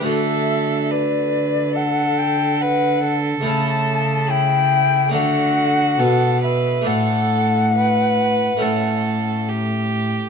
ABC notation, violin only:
X:1
M:4/4
L:1/8
Q:1/4=70
K:D
V:1 name="Violin"
A2 B2 A2 B A- | A2 E2 F2 A B | A2 B2 A2 G2 |]